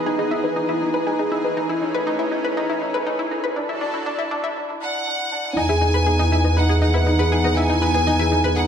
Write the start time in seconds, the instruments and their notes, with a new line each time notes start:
Already playing: analog synth pad E3 B3 G#4 D#5, felt piano D#4 E4 G#4 B4
0.06 felt piano D#4, synth arpeggio sound G#4
0.18 synth arpeggio sound D#4, felt piano G#4
0.31 felt piano D#4, synth arpeggio sound E4
0.44 synth arpeggio sound D#4, felt piano B4
0.56 synth arpeggio sound D#4, felt piano D#4
0.69 synth arpeggio sound E4, felt piano E4
0.82 synth arpeggio sound D#4, felt piano D#4
0.94 synth arpeggio sound B4, felt piano B4
1.07 felt piano D#4, synth arpeggio sound G#4
1.19 synth arpeggio sound D#4, felt piano G#4
1.32 felt piano D#4, synth arpeggio sound E4
1.44 synth arpeggio sound D#4, felt piano B4
1.57 analog synth pad A3 C#4, synth arpeggio sound D#4, felt piano D#4
1.69 synth arpeggio sound E4, felt piano E4
1.82 synth arpeggio sound D#4, felt piano D#4
1.94 felt piano B4, synth arpeggio sound B4
2.07 synth arpeggio sound D#4, felt piano D#4
2.19 synth arpeggio sound E4, felt piano E4
2.31 synth arpeggio sound D#4, felt piano D#4
2.44 felt piano B4, synth arpeggio sound B4
2.56 felt piano D#4, synth arpeggio sound D#4
2.69 felt piano E4, synth arpeggio sound E4
2.82 synth arpeggio sound D#4, felt piano D#4
2.94 synth arpeggio sound B4, felt piano B4
3.06 synth arpeggio sound D#4, felt piano D#4
3.19 synth arpeggio sound E4, felt piano E4
3.31 synth arpeggio sound D#4, felt piano D#4
3.44 synth arpeggio sound B4, felt piano B4
3.56 analog synth pad F#3 D4 A4, synth arpeggio sound D4, felt piano D4
3.69 synth arpeggio sound E4, felt piano E4
3.81 synth arpeggio sound D4, felt piano D4
3.94 synth arpeggio sound E4, felt piano E4
4.06 synth arpeggio sound D4, felt piano D4
4.18 synth arpeggio sound E4, felt piano E4
4.31 synth arpeggio sound D4, felt piano D4
4.44 synth arpeggio sound E4, felt piano E4
4.57 felt piano D4
4.70 felt piano E4
4.82 felt piano D4, violin section F#5
4.95 felt piano E4
5.07 felt piano D4
5.19 felt piano E4
5.32 felt piano D4
5.45 felt piano E4
5.56 double bass section E2, analog synth pad B3, felt piano D#4, synth arpeggio sound D#4, violin section G#5
5.69 synth arpeggio sound E4, felt piano G#4
5.81 synth arpeggio sound D#4, felt piano D#4
5.94 synth arpeggio sound B4, felt piano B4
6.06 felt piano D#4, synth arpeggio sound G#4
6.19 synth arpeggio sound D#4, felt piano E4
6.32 felt piano D#4, synth arpeggio sound E4
6.44 synth arpeggio sound D#4, felt piano B4
6.57 felt piano D#4, synth arpeggio sound B4, violin section F#5
6.69 synth arpeggio sound G#4, felt piano G#4
6.82 synth arpeggio sound D#4, felt piano D#4, violin section F#5
6.94 synth arpeggio sound E4, felt piano B4
7.07 synth arpeggio sound D#4, felt piano D#4
7.19 felt piano G#4, synth arpeggio sound B4
7.32 felt piano D#4, synth arpeggio sound G#4
7.44 synth arpeggio sound D#4, felt piano B4
7.56 felt piano D#4, synth arpeggio sound E4, violin section G#5
7.70 synth arpeggio sound D#4, felt piano E4
7.82 felt piano D#4, synth arpeggio sound B4
7.94 synth arpeggio sound G#4, felt piano B4
8.07 synth arpeggio sound D#4, felt piano D#4
8.19 synth arpeggio sound E4, felt piano G#4
8.32 synth arpeggio sound D#4, felt piano D#4
8.44 synth arpeggio sound B4, felt piano B4
8.56 felt piano D#4, synth arpeggio sound G#4, violin section F#5